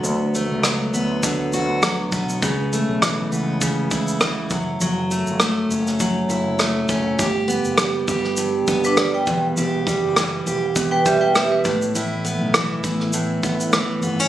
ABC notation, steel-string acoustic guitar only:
X:1
M:4/4
L:1/16
Q:"Swing 16ths" 1/4=101
K:Amix
V:1 name="Steel-string acoustic guitar"
[F,A,B,F]2 A,2 F,2 B,2 D,2 F2 F,2 B,2 | C,2 A,2 E,2 B,2 C,2 E2 E,2 F,2 | F,2 A,2 A,2 C2 F,2 E2 A,2 C2 | G2 B,2 G,2 G2 G,,2 B,2 G,2 E,,2 |
[E,,G]2 G,2 E,2 G2 E,,2 G,2 E,2 A,,2 | [A,,E]2 B,2 E,2 E2 A,,2 B,2 E,2 B, C |]